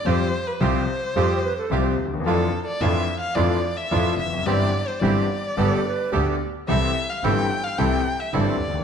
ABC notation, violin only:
X:1
M:4/4
L:1/16
Q:1/4=109
K:C
V:1 name="Violin"
c3 B c8- c2 z2 | A3 d e3 f d3 e3 e2 | d3 c d8- d2 z2 | e3 f g3 f g3 e d4 |]